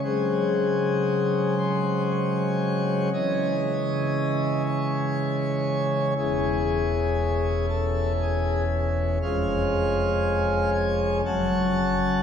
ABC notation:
X:1
M:3/4
L:1/8
Q:1/4=59
K:C#m
V:1 name="Pipe organ"
G3 ^B c2 | d3 c3 | G3 A G z | [K:C#phr] ^e3 g a2 |]
V:2 name="Pipe organ" clef=bass
[C,F,G,^B,]6 | [C,E,G,C]6 | [E,,,E,,E,C]6 | [K:C#phr] [^E,,,^E,,G,C]4 [F,,,F,,F,CF]2 |]